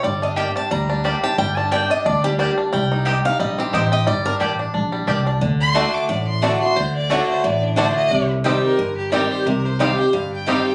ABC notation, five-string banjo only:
X:1
M:4/4
L:1/8
Q:"Swing" 1/4=178
K:Gm
V:1 name="Five-string banjo"
G, D G D G, D D G | G, D D D D G, D D | G, E G E G, C E G | G, D D D D G, D D |
z2 [A,D] z3 [A,D] z | z2 [A,D] z3 [A,D] z | z2 [G,CE] z3 [G,CE] z | z2 [G,CE] z3 [G,CE] z |]